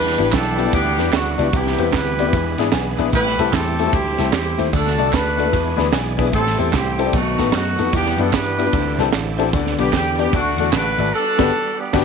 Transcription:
Already playing: slap bass E2, grand piano E3, tonewheel organ E3 G3 B3 D4 E4, horn section D4 G4 B4
0.07 snare
0.18 slap bass A1, grand piano B3 D4 E4 G4 B4, ride, tambourine
0.32 slap bass B1, horn section D4 A4, kick, snare, clap, ride, tambourine
0.58 grand piano B3 D4 E4 G4 B4, ride, tambourine
0.65 grand piano B3 D4 E4 G4 D5
0.73 slap bass D2, horn section B3 D4 G4, kick, ride, tambourine
0.98 slap bass E2, grand piano B3 D4 E4 G4 B4, snare, ride, tambourine
1.12 slap bass D2, horn section B3 D4 F#4, snare, clap, ride, tambourine
1.38 slap bass C#2, grand piano B3 D4 E4 G4 D5, ride, tambourine
1.52 slap bass C2, tonewheel organ C3 E3 G3 B3 G4, grand piano C3, horn section B3 E4 G4, kick, ride, tambourine
1.67 snare
1.78 slap bass E2, grand piano B3 C4 E4 G4 B4, ride, tambourine
1.93 slap bass D2, horn section E4 G4 B4, kick, snare, clap, ride, tambourine
2.19 grand piano B3 C4 E4 G4 D5, ride, tambourine
2.26 grand piano B3 C4 E4 G4 B4
2.32 slap bass E2, tonewheel organ E3 G#3 B3 D4 B4, grand piano E3, kick, ride, tambourine
2.58 slap bass G#2, grand piano B3 D4 E4 G#4 B4, snare, ride, tambourine
2.72 slap bass B1, grand piano G#5, snare, clap, ride, tambourine
2.98 slap bass A#1, grand piano B3 D4 E4 G#4 B4 E5, ride, tambourine
3.12 slap bass A1, grand piano A2, tonewheel organ E3 G3 A3 C4 G4, horn section E4 G4 B4, kick, ride, tambourine
3.27 snare
3.38 slap bass C2, grand piano A3 C4 E4 G4 A4, ride, tambourine
3.53 slap bass E2, horn section C4 E4 A4, kick, snare, clap, ride, tambourine
3.79 grand piano A3 C4 E4 G4 A4, ride, tambourine
3.86 grand piano A3 C4 E4 G4 A4
3.93 slap bass D2, horn section C4 E4 G4, kick, ride, tambourine
4.18 slap bass C2, grand piano A3 C4 E4 G4 A4, snare, ride, tambourine
4.33 slap bass E2, horn section C4 E4 G4, snare, clap, ride, tambourine
4.57 slap bass D#2, grand piano A3 C4 E4 G4 C5, ride, tambourine
4.73 slap bass D2, grand piano D3, tonewheel organ A3 D4 E4, horn section D4 F#4 A4, kick, ride, tambourine
4.78 tonewheel organ F#4
4.87 snare
4.98 slap bass C2, grand piano A3 D4 F#4 A4 D5, ride, tambourine
5.13 slap bass D2, horn section D4 F#4 B4, kick, snare, clap, ride, tambourine
5.37 grand piano A3 D4 F#4 A4 D5, ride, tambourine
5.45 grand piano A3 D4 F#4 A4 B4
5.52 slap bass E2, grand piano E3, tonewheel organ E3 G#3 B3 D4 G#4, kick, ride, tambourine
5.77 slap bass D2, grand piano B3 D4 E4 G#4 B4 B5, snare, ride, tambourine
5.92 slap bass B1, tonewheel organ D5, grand piano G#5, snare, clap, ride, tambourine
6.17 grand piano B3 D4 E4 G#4 B4 E5, kick, ride, tambourine
6.32 slap bass A1, grand piano A2, tonewheel organ E3 G3 A3 C4 G4, horn section C4 E4 A4, kick, ride, tambourine
6.47 snare
6.58 slap bass E2, grand piano C4 E4 G4 A4 C5, ride, tambourine
6.73 slap bass C2, horn section C4 E4 G4, kick, snare, clap, ride, tambourine
6.98 grand piano C4 E4 G4 A4 C5, ride, tambourine
7.05 grand piano C4 E4 G4 A4 D5
7.13 slap bass B1, grand piano B2, tonewheel organ D#3 F#3 A3 B3 F4, horn section A3 D#4 F#4, kick, ride, tambourine
7.19 tonewheel organ F#4
7.38 slap bass A1, grand piano B3 D#4 F#4 A4 B4, snare, ride, tambourine
7.52 slap bass F#2, horn section A3 D#4 F#4, snare, clap, ride, tambourine
7.78 slap bass F2, grand piano B3 D#4 F#4 A4 B4, ride, tambourine
7.92 slap bass E2, tonewheel organ E3 G3 B3 D4 F#4, grand piano E3, horn section B3 D4 G4, kick, ride, tambourine
7.97 tonewheel organ G4
8.06 snare
8.18 slap bass F#2, grand piano B3 D4 E4 G4 B4, horn section A4, ride, tambourine
8.33 slap bass G2, horn section D4 G4 B4, kick, snare, clap, ride, tambourine
8.58 grand piano B3 D4 E4 G4 B4, ride, tambourine
8.66 grand piano B3 D4 E4 G4 B4
8.72 slap bass D2, grand piano D3, tonewheel organ E3 A3 C4 D4 G4, kick, ride, tambourine
8.98 slap bass C2, grand piano C4 D4 E4 G4 A4, snare, ride, tambourine
9.12 slap bass A1, snare, clap, ride, tambourine
9.38 grand piano C4 D4 E4 G4 A4, ride, tambourine
9.51 slap bass D2, grand piano D3, tonewheel organ B3 D4 G4, kick, ride, tambourine
9.67 snare
9.78 slap bass B1, grand piano B3 D4 G4 B4 D5, horn section G4, ride, tambourine
9.93 slap bass E2, horn section G4, kick, snare, clap, ride, tambourine
10.18 grand piano B3 D4 G4 B4 D5, horn section G4, ride, tambourine
10.25 grand piano B3 D4 G4 B4 D5
10.33 slap bass D2, grand piano D3, horn section A3 D4 F#4, tonewheel organ A3 D4 E4, kick, ride, tambourine
10.39 tonewheel organ F#4
10.58 slap bass E2, grand piano A3 D4 F#4 A4 D5, ride, tambourine
10.72 slap bass A1, horn section D4 F#4 B4, snare, clap, ride, tambourine
10.98 slap bass G#1, grand piano A3 D4 F#4 A4 D5, ride, tambourine
11.14 tonewheel organ G3 B3 D4 B4 F#5, horn section D4 F#4 A4
11.38 slap bass G1, grand piano B3 D4 F#4 G4 B4, kick, snare, crash
11.80 horn section B3 D4 G4
11.93 slap bass G1, grand piano B3 D4 F#4 G4 B4, kick, snare, crash

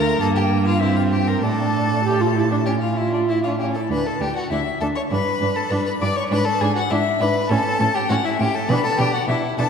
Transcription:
Already playing: cello D2, viola A3, violin A#4 A#5
0.20 cello G2, viola A#3, violin A4 A5
0.35 violin G4 G5
0.66 violin F4 F5
0.80 viola C4, violin E4 E5
0.96 violin F4 F5
1.12 violin G4 G5
1.28 violin A#4 A#5
1.42 cello A2, viola D4, violin A4 A5
2.05 viola G4
2.21 viola F4
2.35 viola E4
2.51 viola D4
2.65 viola C#4, violin G4 G5
2.81 violin F4 F5
2.96 violin E4 E5, viola F4
3.13 violin D4 D5
3.28 violin E4 E5, viola E4
3.44 viola D4, violin F4 F5
3.59 viola C#4, violin G4 G5
3.74 viola E4, violin A4 A5
3.90 cello D2, viola D4, violin B4 B5
4.05 violin A4 A5
4.20 cello D2, viola D4, violin G4 G5
4.35 violin F#4 F#5
4.50 cello D2, viola D4, violin E4 E5
4.81 cello D2, viola D4, violin A4 A5
4.95 violin C#5 C#6
5.10 cello G2, viola D4, violin B4 B5
5.41 cello G2, viola D4
5.56 violin A4 A5
5.70 cello G2, viola D4, violin B4 B5
5.86 violin B4 B5
6.01 cello G2, viola D4, violin D5 D6
6.16 violin C#5 C#6
6.30 cello G#2, viola D4, violin B4 B5
6.45 violin A4 A5
6.61 cello G#2, viola D4, violin G#4 G#5
6.75 violin F#4 F#5
6.90 cello G#2, viola D4, violin E4 E5
7.20 cello G#2, viola D4, violin B4 B5
7.49 cello A2, viola C#4, violin A4 A5
7.80 cello A2, viola C#4
7.94 violin G4 G5
8.09 cello A2, viola C#4, violin F#4 F#5
8.24 violin E4 E5
8.39 cello A2, viola C#4, violin G4 G5
8.54 violin A4 A5
8.69 cello B2, viola D4, violin B4 B5
8.84 violin A4 A5
8.98 cello B2, viola D4, violin G4 G5
9.14 violin F#4 F#5
9.28 cello B2, viola D4, violin E4 E5
9.58 cello B2, viola D4, violin A4 A5

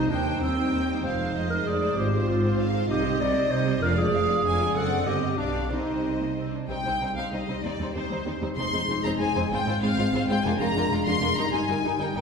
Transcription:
Already playing: viola section G3 D#4, clarinet D#4
0.10 double bass section D#2, cello section D#2, viola section G3 D#4, clarinet D4, violin section C5 G5
0.27 viola section G3 D#4, violin section C5
0.41 double bass section D#2, cello section D#2, clarinet C4, violin section G5
0.58 viola section G3 D#4, violin section C5
0.73 double bass section D#2, cello section D#2
0.89 viola section G3 D#4, violin section C5
1.04 double bass section F1, cello section F2, clarinet C5, violin section F5
1.20 viola section G#3 D#4, violin section C5
1.35 double bass section F1, cello section F2, violin section D#5
1.50 viola section G#3 D#4, clarinet A#4, violin section C5
1.66 double bass section F1, cello section F2, clarinet G#4, violin section D5
1.81 viola section G#3 D#4, violin section C5
1.97 double bass section G#1, cello section G#2, viola section C4 F4, clarinet G4, violin section C5
2.13 viola section C4 F4, violin section C5
2.28 double bass section G#1, cello section G#2, clarinet F4
2.43 viola section C4 F4, violin section C5
2.59 double bass section G#1, cello section G#2, violin section F5
2.74 viola section C4 F4, violin section C5
2.89 double bass section C2, cello section C3, viola section G3 D#4, clarinet G4, violin section D#5
3.04 viola section C4 G4, violin section C5
3.20 double bass section C2, cello section C3, viola section G3 D#4, clarinet D5, violin section D#5
3.35 viola section C4 G4, violin section C5
3.50 double bass section C2, cello section C3, viola section G3 D#4, clarinet C5, violin section D#5
3.67 viola section C4 G4, violin section C5
3.82 double bass section F1, cello section F2, viola section F3 D4, clarinet A#4, violin section D5 F5
3.97 viola section G#3 F4, clarinet G#4, violin section D5
4.13 double bass section F1, cello section F2, viola section F3 D4, violin section F5
4.28 viola section G#3 F4, violin section D5
4.45 double bass section F1, cello section F2, viola section F3 D4, violin section F5 G#5
4.61 viola section G#3 F4, violin section D5
4.76 double bass section F#1, cello section F#2, viola section C4 D4, clarinet A4, violin section D5 F#5
5.07 double bass section G1, cello section G2, viola section C4 G4, clarinet G4, violin section D#5
5.38 double bass section B1, cello section B2, clarinet D4, viola section D4 G4, violin section D5 F5
5.71 double bass section C2, cello section C3, timpani C3, viola section C4 G4, clarinet D#4, violin section C5 D#5
6.04 viola section C4
6.21 viola section A#3
6.38 viola section C4
6.54 viola section D4
6.69 double bass section C2, cello section C2, viola section G3 C4, french horn section G3 D#4, violin section D#4 C5 G5
6.84 cello section C2, double bass section C2, viola section G3 C4, violin section D#4 C5
7.00 double bass section C2, cello section C2, viola section G3 C4, violin section D#4 C5
7.16 cello section C2, double bass section C2, viola section G3 C4, violin section D#4 C5 F5
7.32 double bass section C2, cello section C2, viola section G3 C4, violin section D#4 C5 D#5
7.47 double bass section C2, cello section C2, viola section G3 C4, violin section D#4 C5
7.63 double bass section D#2, cello section D#2, viola section G3 C4, violin section D#4 C5 D5
7.78 double bass section D#2, cello section D#2, viola section G3 C4, violin section D#4 C5
7.94 double bass section D#2, cello section D#2, viola section G3 C4, violin section D#4 C5
8.10 cello section D#2, double bass section D#2, viola section G3 C4, violin section D#4 C5
8.25 double bass section D#2, cello section D#2, viola section G3 C4, violin section D#4 C5
8.41 cello section D#2, double bass section D#2, viola section G3 C4, violin section D#4 C5
8.56 double bass section F1, cello section F2, viola section G#3 C4, french horn section G#3 D#4, violin section D#4 C5 C6
8.72 double bass section F1, cello section F2, viola section G#3 C4, violin section D#4 C5
8.88 double bass section F1, cello section F2, viola section G#3 C4, violin section D#4 C5
9.04 double bass section F1, cello section F2, viola section G#3 C4, violin section D#4 C5 A#5
9.19 double bass section F1, cello section F2, viola section G#3 C4, violin section D#4 C5 G#5
9.35 double bass section F1, cello section F2, viola section G#3 C4, violin section D#4 C5
9.50 double bass section G#1, cello section G#2, viola section G#3 C4, french horn section C4, violin section F4 C5 G5
9.66 double bass section G#1, cello section G#2, viola section G#3 C4, violin section F4 C5
9.81 double bass section G#1, cello section G#2, viola section G#3 C4, violin section F4 C5 F5
9.96 double bass section G#1, cello section G#2, viola section G#3 C4, violin section F4 C5
10.13 double bass section G#1, cello section G#2, viola section G#3 C4, violin section F4 C5
10.28 double bass section G#1, cello section G#2, viola section G#3 C4, violin section F4 C5 G5
10.43 double bass section F1, cello section F2, french horn section G#3 D4, viola section G#3 D4, violin section F4 A#4 G#5
10.59 double bass section F1, cello section F2, viola section G#3 D4, violin section F4 A#4 A#5
10.75 double bass section F1, cello section F2, viola section G#3 D4, violin section F4 A#4
10.90 double bass section F1, cello section F2, viola section G#3 D4, violin section F4 A#4
11.05 double bass section F1, cello section F2, viola section G#3 D4, violin section F4 A#4 C6
11.21 double bass section F1, cello section F2, viola section G#3 D4, violin section F4 A#4
11.36 double bass section G1, cello section G2, french horn section G3 D#4, viola section G3 D#4, violin section D#4 A#4 A#5
11.52 double bass section G1, cello section G2, viola section G3 D#4, violin section D#4 A#4 G#5
11.68 double bass section G1, cello section G2, viola section G3 D#4, violin section D#4 A#4
11.83 double bass section G1, cello section G2, viola section G3 D#4, violin section D#4 A#4
11.99 double bass section G1, cello section G2, viola section G3 D#4, violin section D#4 A#4 G5
12.14 double bass section G1, cello section G2, viola section G3 D#4, violin section D#4 A#4

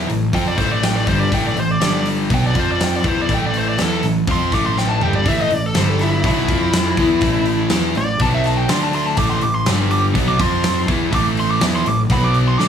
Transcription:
0.08 fingered electric bass A1, overdriven electric guitar A2 E3, open hi-hat
0.33 fingered electric bass F2, overdriven electric guitar F3 C4 F4, lead electric guitar G5, kick, open hi-hat
0.48 lead electric guitar D5
0.58 fingered electric bass A1, overdriven electric guitar A2 E3 A3, lead electric guitar C5, kick, snare, open hi-hat
0.72 lead electric guitar D5
0.83 lead electric guitar G5, snare, open hi-hat
0.96 lead electric guitar D5
1.07 fingered electric bass G1, overdriven electric guitar G2 D3 G3, lead electric guitar C5, kick, open hi-hat
1.20 lead electric guitar D5
1.31 fingered electric bass A1, overdriven electric guitar A2 E3 A3, lead electric guitar G5, kick, open hi-hat
1.47 lead electric guitar D5
1.56 fingered electric bass A1, overdriven electric guitar A2 E3, lead electric guitar C5, open hi-hat
1.71 lead electric guitar D5
1.81 fingered electric bass G1, overdriven electric guitar G2 D3 G3, lead electric guitar D5, snare, open hi-hat
2.05 open hi-hat
2.30 fingered electric bass B1, overdriven electric guitar B2 F#3 B3, lead electric guitar G5, kick, open hi-hat
2.46 lead electric guitar D5
2.55 fingered electric bass F2, overdriven electric guitar F3 C4 F4, kick, open hi-hat
2.59 lead electric guitar C5
2.71 lead electric guitar D5
2.80 lead electric guitar G5, snare, open hi-hat
2.96 lead electric guitar D5
3.04 fingered electric bass E2, overdriven electric guitar E3 B3 E4, kick, open hi-hat
3.09 lead electric guitar C5
3.22 lead electric guitar D5
3.29 fingered electric bass A1, overdriven electric guitar A2 E3 A3, kick, open hi-hat
3.34 lead electric guitar G5
3.46 lead electric guitar D5
3.54 open hi-hat
3.58 lead electric guitar C5
3.69 lead electric guitar D5
3.78 fingered electric bass E2, overdriven electric guitar E3 B3 E4, lead electric guitar A4, snare, open hi-hat
4.02 fingered electric bass A1, overdriven electric guitar A2 E3, snare, open hi-hat
4.27 fingered electric bass F2, overdriven electric guitar F3 C4 F4, kick, open hi-hat
4.31 lead electric guitar C6
4.52 fingered electric bass A1, overdriven electric guitar A2 E3 A3, lead electric guitar D6, kick, snare, open hi-hat
4.66 lead electric guitar C6
4.78 lead electric guitar G5, snare
4.89 lead electric guitar A5
5.01 fingered electric bass G1, overdriven electric guitar G2 D3 G3, lead electric guitar G5, mid tom
5.13 lead electric guitar D5, floor tom
5.26 fingered electric bass A1, overdriven electric guitar A2 E3 A3, lead electric guitar E5, kick, open hi-hat
5.41 lead electric guitar D#5
5.50 fingered electric bass A1, overdriven electric guitar A2 E3, lead electric guitar D5, open hi-hat
5.66 lead electric guitar A4
5.74 fingered electric bass G1, overdriven electric guitar G2 D3 G3, snare, open hi-hat
5.78 lead electric guitar C5
5.89 lead electric guitar A4
5.99 lead electric guitar E4, snare, open hi-hat
6.24 fingered electric bass B1, overdriven electric guitar B2 F#3 B3, lead electric guitar E4, kick, open hi-hat
6.48 fingered electric bass F2, overdriven electric guitar F3 C4 F4, kick, open hi-hat
6.73 snare, open hi-hat
6.97 fingered electric bass E2, overdriven electric guitar E3 B3 E4, kick, open hi-hat
7.21 fingered electric bass A1, overdriven electric guitar A2 E3 A3, kick, open hi-hat
7.45 open hi-hat
7.69 fingered electric bass E2, overdriven electric guitar E3 B3 E4, snare, open hi-hat
7.95 fingered electric bass A1, overdriven electric guitar A2 E3, lead electric guitar D5, open hi-hat
8.19 fingered electric bass B1, overdriven electric guitar B2 F#3 B3, lead electric guitar A5, kick, open hi-hat
8.34 lead electric guitar E5
8.44 lead electric guitar A5, snare, open hi-hat
8.57 lead electric guitar G5
8.68 fingered electric bass D2, overdriven electric guitar D3 A3 D4, lead electric guitar C6, snare, open hi-hat
8.83 lead electric guitar A5
8.93 lead electric guitar C6, open hi-hat
9.06 lead electric guitar A5
9.17 fingered electric bass A1, overdriven electric guitar A2 E3 A3, lead electric guitar D6, kick, open hi-hat
9.30 lead electric guitar C6
9.41 fingered electric bass A1, overdriven electric guitar A2 E3, lead electric guitar D6, open hi-hat
9.55 lead electric guitar C6
9.66 fingered electric bass G1, overdriven electric guitar G2 D3 G3, snare, open hi-hat
9.90 lead electric guitar D6, open hi-hat
10.15 fingered electric bass B1, overdriven electric guitar B2 F#3 B3, kick, open hi-hat
10.28 lead electric guitar D6
10.39 fingered electric bass F2, overdriven electric guitar F3 C4 F4, lead electric guitar C6, kick, open hi-hat
10.63 snare, open hi-hat
10.88 fingered electric bass E2, overdriven electric guitar E3 B3 E4, kick, open hi-hat
11.12 fingered electric bass A1, overdriven electric guitar A2 E3 A3, lead electric guitar D6, kick, open hi-hat
11.37 lead electric guitar C6, open hi-hat
11.51 lead electric guitar D6
11.61 fingered electric bass E2, overdriven electric guitar E3 B3 E4, snare, open hi-hat
11.76 lead electric guitar C6
11.85 fingered electric bass A1, overdriven electric guitar A2 E3, lead electric guitar D6, open hi-hat
12.09 fingered electric bass B1, overdriven electric guitar B2 F#3 B3, lead electric guitar B5, kick, open hi-hat
12.24 lead electric guitar D6
12.34 open hi-hat
12.48 lead electric guitar C6
12.58 fingered electric bass D2, overdriven electric guitar D3 A3 D4, lead electric guitar D6, snare

